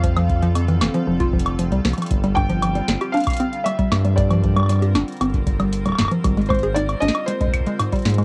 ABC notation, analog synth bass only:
X:1
M:4/4
L:1/16
Q:1/4=116
K:Gm
V:1 name="Analog synth bass" clef=bass
F,,6 F,,, z F,,,4- F,,, C,, C,, z | G,,,4- G,,, z G,,, z6 z G,,2- | G,,6 G,,, z G,,,4- G,,, D,,, D,,, z | _A,,,4- A,,, z A,,, z6 z _A,,2 |]